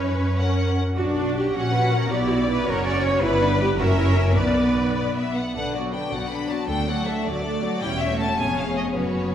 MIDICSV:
0, 0, Header, 1, 6, 480
1, 0, Start_track
1, 0, Key_signature, 2, "minor"
1, 0, Tempo, 391389
1, 1191, Time_signature, 6, 3, 24, 8
1, 1665, Tempo, 374065
1, 5025, Tempo, 391901
1, 7425, Tempo, 378549
1, 11751, End_track
2, 0, Start_track
2, 0, Title_t, "Violin section"
2, 0, Program_c, 0, 48
2, 0, Note_on_c, 0, 73, 53
2, 455, Note_off_c, 0, 73, 0
2, 473, Note_on_c, 0, 78, 48
2, 954, Note_off_c, 0, 78, 0
2, 1184, Note_on_c, 0, 74, 49
2, 1851, Note_off_c, 0, 74, 0
2, 1905, Note_on_c, 0, 78, 54
2, 2630, Note_off_c, 0, 78, 0
2, 2634, Note_on_c, 0, 74, 58
2, 3344, Note_on_c, 0, 73, 65
2, 3351, Note_off_c, 0, 74, 0
2, 4055, Note_off_c, 0, 73, 0
2, 4060, Note_on_c, 0, 74, 66
2, 4732, Note_off_c, 0, 74, 0
2, 4783, Note_on_c, 0, 76, 74
2, 5497, Note_off_c, 0, 76, 0
2, 5514, Note_on_c, 0, 74, 58
2, 6183, Note_off_c, 0, 74, 0
2, 6222, Note_on_c, 0, 74, 56
2, 6449, Note_off_c, 0, 74, 0
2, 6480, Note_on_c, 0, 76, 51
2, 6714, Note_off_c, 0, 76, 0
2, 6718, Note_on_c, 0, 78, 46
2, 6943, Note_off_c, 0, 78, 0
2, 6958, Note_on_c, 0, 78, 56
2, 7175, Note_off_c, 0, 78, 0
2, 7193, Note_on_c, 0, 74, 45
2, 7286, Note_off_c, 0, 74, 0
2, 7426, Note_on_c, 0, 79, 44
2, 7659, Note_off_c, 0, 79, 0
2, 7662, Note_on_c, 0, 78, 48
2, 7899, Note_on_c, 0, 83, 56
2, 7901, Note_off_c, 0, 78, 0
2, 8136, Note_on_c, 0, 81, 52
2, 8139, Note_off_c, 0, 83, 0
2, 8379, Note_off_c, 0, 81, 0
2, 8390, Note_on_c, 0, 79, 64
2, 8620, Note_on_c, 0, 78, 60
2, 8621, Note_off_c, 0, 79, 0
2, 8853, Note_on_c, 0, 76, 56
2, 8860, Note_off_c, 0, 78, 0
2, 9090, Note_on_c, 0, 74, 66
2, 9095, Note_off_c, 0, 76, 0
2, 9807, Note_off_c, 0, 74, 0
2, 9810, Note_on_c, 0, 79, 73
2, 10040, Note_on_c, 0, 76, 66
2, 10050, Note_off_c, 0, 79, 0
2, 10284, Note_off_c, 0, 76, 0
2, 10294, Note_on_c, 0, 81, 58
2, 10526, Note_on_c, 0, 80, 59
2, 10527, Note_off_c, 0, 81, 0
2, 10768, Note_off_c, 0, 80, 0
2, 10770, Note_on_c, 0, 77, 53
2, 11010, Note_off_c, 0, 77, 0
2, 11016, Note_on_c, 0, 75, 47
2, 11112, Note_off_c, 0, 75, 0
2, 11253, Note_on_c, 0, 73, 44
2, 11751, Note_off_c, 0, 73, 0
2, 11751, End_track
3, 0, Start_track
3, 0, Title_t, "Violin section"
3, 0, Program_c, 1, 48
3, 0, Note_on_c, 1, 73, 53
3, 805, Note_off_c, 1, 73, 0
3, 1909, Note_on_c, 1, 78, 68
3, 2581, Note_off_c, 1, 78, 0
3, 2630, Note_on_c, 1, 74, 70
3, 3335, Note_off_c, 1, 74, 0
3, 3346, Note_on_c, 1, 73, 73
3, 4056, Note_off_c, 1, 73, 0
3, 4057, Note_on_c, 1, 71, 81
3, 4767, Note_off_c, 1, 71, 0
3, 4776, Note_on_c, 1, 70, 79
3, 5480, Note_off_c, 1, 70, 0
3, 5493, Note_on_c, 1, 74, 63
3, 6565, Note_off_c, 1, 74, 0
3, 6952, Note_on_c, 1, 62, 37
3, 6953, Note_on_c, 1, 71, 35
3, 7172, Note_off_c, 1, 62, 0
3, 7173, Note_off_c, 1, 71, 0
3, 7191, Note_on_c, 1, 66, 33
3, 7192, Note_on_c, 1, 74, 33
3, 7424, Note_off_c, 1, 66, 0
3, 7425, Note_off_c, 1, 74, 0
3, 7429, Note_on_c, 1, 62, 32
3, 7431, Note_on_c, 1, 71, 33
3, 7666, Note_off_c, 1, 62, 0
3, 7667, Note_off_c, 1, 71, 0
3, 7670, Note_on_c, 1, 74, 33
3, 7672, Note_on_c, 1, 66, 36
3, 7905, Note_off_c, 1, 74, 0
3, 7906, Note_off_c, 1, 66, 0
3, 7908, Note_on_c, 1, 62, 32
3, 7908, Note_on_c, 1, 71, 35
3, 8127, Note_off_c, 1, 62, 0
3, 8127, Note_off_c, 1, 71, 0
3, 8132, Note_on_c, 1, 74, 37
3, 8135, Note_on_c, 1, 66, 34
3, 8377, Note_off_c, 1, 74, 0
3, 8378, Note_off_c, 1, 66, 0
3, 8382, Note_on_c, 1, 69, 41
3, 8383, Note_off_c, 1, 69, 0
3, 8383, Note_on_c, 1, 69, 37
3, 8606, Note_off_c, 1, 69, 0
3, 8627, Note_on_c, 1, 74, 40
3, 8629, Note_on_c, 1, 66, 39
3, 8860, Note_on_c, 1, 69, 37
3, 8863, Note_off_c, 1, 74, 0
3, 8864, Note_off_c, 1, 66, 0
3, 8864, Note_off_c, 1, 69, 0
3, 8864, Note_on_c, 1, 69, 38
3, 9101, Note_off_c, 1, 69, 0
3, 9101, Note_on_c, 1, 66, 41
3, 9107, Note_on_c, 1, 74, 42
3, 9332, Note_on_c, 1, 69, 41
3, 9334, Note_off_c, 1, 69, 0
3, 9334, Note_on_c, 1, 69, 39
3, 9338, Note_off_c, 1, 66, 0
3, 9341, Note_off_c, 1, 74, 0
3, 9556, Note_off_c, 1, 69, 0
3, 9581, Note_on_c, 1, 74, 41
3, 9582, Note_on_c, 1, 66, 44
3, 9815, Note_off_c, 1, 74, 0
3, 9816, Note_off_c, 1, 66, 0
3, 9820, Note_on_c, 1, 64, 49
3, 9823, Note_on_c, 1, 73, 47
3, 9921, Note_off_c, 1, 64, 0
3, 10182, Note_on_c, 1, 66, 47
3, 10486, Note_off_c, 1, 73, 0
3, 10528, Note_off_c, 1, 66, 0
3, 10538, Note_on_c, 1, 68, 43
3, 10538, Note_on_c, 1, 73, 47
3, 11242, Note_off_c, 1, 73, 0
3, 11254, Note_on_c, 1, 66, 40
3, 11256, Note_off_c, 1, 68, 0
3, 11257, Note_on_c, 1, 71, 37
3, 11751, Note_off_c, 1, 66, 0
3, 11751, Note_off_c, 1, 71, 0
3, 11751, End_track
4, 0, Start_track
4, 0, Title_t, "Cello section"
4, 0, Program_c, 2, 48
4, 0, Note_on_c, 2, 61, 58
4, 926, Note_off_c, 2, 61, 0
4, 1188, Note_on_c, 2, 66, 76
4, 1284, Note_off_c, 2, 66, 0
4, 1426, Note_on_c, 2, 62, 73
4, 1658, Note_off_c, 2, 62, 0
4, 1662, Note_on_c, 2, 67, 67
4, 1900, Note_off_c, 2, 67, 0
4, 1903, Note_on_c, 2, 66, 64
4, 2140, Note_on_c, 2, 71, 67
4, 2146, Note_off_c, 2, 66, 0
4, 2384, Note_on_c, 2, 70, 74
4, 2386, Note_off_c, 2, 71, 0
4, 2628, Note_off_c, 2, 70, 0
4, 2628, Note_on_c, 2, 67, 86
4, 2869, Note_off_c, 2, 67, 0
4, 2871, Note_on_c, 2, 66, 73
4, 3109, Note_on_c, 2, 71, 84
4, 3111, Note_off_c, 2, 66, 0
4, 3344, Note_off_c, 2, 71, 0
4, 3347, Note_on_c, 2, 70, 93
4, 3584, Note_off_c, 2, 70, 0
4, 3587, Note_on_c, 2, 74, 84
4, 3816, Note_off_c, 2, 74, 0
4, 3822, Note_on_c, 2, 73, 92
4, 4059, Note_off_c, 2, 73, 0
4, 4061, Note_on_c, 2, 64, 99
4, 4301, Note_off_c, 2, 64, 0
4, 4304, Note_on_c, 2, 62, 81
4, 4541, Note_on_c, 2, 67, 90
4, 4544, Note_off_c, 2, 62, 0
4, 4637, Note_off_c, 2, 67, 0
4, 4785, Note_on_c, 2, 66, 90
4, 4881, Note_off_c, 2, 66, 0
4, 5030, Note_on_c, 2, 64, 70
4, 5256, Note_off_c, 2, 64, 0
4, 5262, Note_on_c, 2, 61, 75
4, 5494, Note_off_c, 2, 61, 0
4, 5505, Note_on_c, 2, 59, 68
4, 6716, Note_off_c, 2, 59, 0
4, 6953, Note_on_c, 2, 47, 44
4, 7546, Note_off_c, 2, 47, 0
4, 7663, Note_on_c, 2, 47, 50
4, 8263, Note_off_c, 2, 47, 0
4, 8381, Note_on_c, 2, 38, 53
4, 8982, Note_off_c, 2, 38, 0
4, 9096, Note_on_c, 2, 38, 59
4, 9694, Note_off_c, 2, 38, 0
4, 9811, Note_on_c, 2, 40, 55
4, 10479, Note_off_c, 2, 40, 0
4, 10528, Note_on_c, 2, 41, 47
4, 11249, Note_on_c, 2, 42, 39
4, 11251, Note_off_c, 2, 41, 0
4, 11751, Note_off_c, 2, 42, 0
4, 11751, End_track
5, 0, Start_track
5, 0, Title_t, "Viola section"
5, 0, Program_c, 3, 48
5, 0, Note_on_c, 3, 61, 53
5, 0, Note_on_c, 3, 71, 54
5, 445, Note_off_c, 3, 61, 0
5, 447, Note_off_c, 3, 71, 0
5, 462, Note_on_c, 3, 70, 46
5, 463, Note_on_c, 3, 61, 49
5, 939, Note_off_c, 3, 61, 0
5, 948, Note_off_c, 3, 70, 0
5, 1180, Note_on_c, 3, 62, 56
5, 1181, Note_on_c, 3, 66, 52
5, 1849, Note_off_c, 3, 62, 0
5, 1850, Note_off_c, 3, 66, 0
5, 1902, Note_on_c, 3, 66, 51
5, 1903, Note_on_c, 3, 61, 55
5, 2614, Note_off_c, 3, 66, 0
5, 2629, Note_off_c, 3, 61, 0
5, 2629, Note_on_c, 3, 59, 59
5, 2632, Note_on_c, 3, 64, 59
5, 3336, Note_off_c, 3, 64, 0
5, 3349, Note_off_c, 3, 59, 0
5, 3351, Note_on_c, 3, 61, 68
5, 3351, Note_on_c, 3, 66, 59
5, 4045, Note_off_c, 3, 66, 0
5, 4059, Note_off_c, 3, 61, 0
5, 4062, Note_on_c, 3, 71, 65
5, 4065, Note_on_c, 3, 59, 65
5, 4734, Note_off_c, 3, 71, 0
5, 4735, Note_off_c, 3, 59, 0
5, 4784, Note_on_c, 3, 70, 66
5, 4785, Note_on_c, 3, 61, 65
5, 5484, Note_off_c, 3, 61, 0
5, 5484, Note_off_c, 3, 70, 0
5, 5498, Note_on_c, 3, 59, 57
5, 5502, Note_on_c, 3, 71, 58
5, 6688, Note_off_c, 3, 59, 0
5, 6714, Note_off_c, 3, 71, 0
5, 6954, Note_on_c, 3, 50, 33
5, 6956, Note_on_c, 3, 62, 35
5, 7173, Note_off_c, 3, 50, 0
5, 7174, Note_off_c, 3, 62, 0
5, 7185, Note_on_c, 3, 59, 31
5, 7186, Note_on_c, 3, 54, 31
5, 7420, Note_on_c, 3, 62, 32
5, 7421, Note_on_c, 3, 50, 32
5, 7422, Note_off_c, 3, 54, 0
5, 7422, Note_off_c, 3, 59, 0
5, 7657, Note_on_c, 3, 59, 35
5, 7659, Note_on_c, 3, 54, 35
5, 7662, Note_off_c, 3, 50, 0
5, 7662, Note_off_c, 3, 62, 0
5, 7898, Note_off_c, 3, 59, 0
5, 7898, Note_on_c, 3, 50, 30
5, 7898, Note_on_c, 3, 62, 30
5, 7899, Note_off_c, 3, 54, 0
5, 8122, Note_off_c, 3, 50, 0
5, 8122, Note_off_c, 3, 62, 0
5, 8135, Note_on_c, 3, 54, 33
5, 8136, Note_on_c, 3, 59, 33
5, 8375, Note_on_c, 3, 57, 37
5, 8378, Note_off_c, 3, 54, 0
5, 8379, Note_off_c, 3, 59, 0
5, 8379, Note_on_c, 3, 62, 40
5, 8602, Note_off_c, 3, 57, 0
5, 8604, Note_off_c, 3, 62, 0
5, 8624, Note_on_c, 3, 54, 38
5, 8624, Note_on_c, 3, 57, 37
5, 8847, Note_off_c, 3, 57, 0
5, 8862, Note_off_c, 3, 54, 0
5, 8862, Note_on_c, 3, 57, 39
5, 8864, Note_on_c, 3, 62, 38
5, 9086, Note_off_c, 3, 57, 0
5, 9101, Note_off_c, 3, 62, 0
5, 9101, Note_on_c, 3, 54, 43
5, 9101, Note_on_c, 3, 57, 43
5, 9328, Note_off_c, 3, 57, 0
5, 9338, Note_off_c, 3, 54, 0
5, 9340, Note_on_c, 3, 62, 41
5, 9343, Note_on_c, 3, 57, 39
5, 9559, Note_off_c, 3, 62, 0
5, 9561, Note_off_c, 3, 57, 0
5, 9572, Note_on_c, 3, 54, 43
5, 9573, Note_on_c, 3, 57, 41
5, 9809, Note_on_c, 3, 55, 48
5, 9811, Note_off_c, 3, 54, 0
5, 9811, Note_off_c, 3, 57, 0
5, 9811, Note_on_c, 3, 61, 48
5, 9910, Note_off_c, 3, 55, 0
5, 10166, Note_on_c, 3, 57, 44
5, 10479, Note_off_c, 3, 61, 0
5, 10520, Note_off_c, 3, 57, 0
5, 10520, Note_on_c, 3, 59, 45
5, 10524, Note_on_c, 3, 61, 46
5, 11233, Note_off_c, 3, 59, 0
5, 11235, Note_off_c, 3, 61, 0
5, 11252, Note_on_c, 3, 61, 37
5, 11253, Note_on_c, 3, 59, 38
5, 11751, Note_off_c, 3, 59, 0
5, 11751, Note_off_c, 3, 61, 0
5, 11751, End_track
6, 0, Start_track
6, 0, Title_t, "Double bass section"
6, 0, Program_c, 4, 48
6, 0, Note_on_c, 4, 42, 60
6, 923, Note_off_c, 4, 42, 0
6, 1189, Note_on_c, 4, 35, 54
6, 1854, Note_off_c, 4, 35, 0
6, 1906, Note_on_c, 4, 34, 55
6, 2616, Note_off_c, 4, 34, 0
6, 2627, Note_on_c, 4, 35, 65
6, 3334, Note_off_c, 4, 35, 0
6, 3345, Note_on_c, 4, 30, 64
6, 4042, Note_off_c, 4, 30, 0
6, 4056, Note_on_c, 4, 31, 81
6, 4731, Note_off_c, 4, 31, 0
6, 4784, Note_on_c, 4, 30, 65
6, 5483, Note_off_c, 4, 30, 0
6, 5496, Note_on_c, 4, 35, 67
6, 6711, Note_off_c, 4, 35, 0
6, 6952, Note_on_c, 4, 35, 48
6, 7545, Note_off_c, 4, 35, 0
6, 7661, Note_on_c, 4, 35, 44
6, 8262, Note_off_c, 4, 35, 0
6, 8378, Note_on_c, 4, 38, 52
6, 8981, Note_off_c, 4, 38, 0
6, 9095, Note_on_c, 4, 38, 55
6, 9693, Note_off_c, 4, 38, 0
6, 9811, Note_on_c, 4, 28, 52
6, 10479, Note_off_c, 4, 28, 0
6, 10531, Note_on_c, 4, 29, 47
6, 11253, Note_off_c, 4, 29, 0
6, 11255, Note_on_c, 4, 30, 42
6, 11751, Note_off_c, 4, 30, 0
6, 11751, End_track
0, 0, End_of_file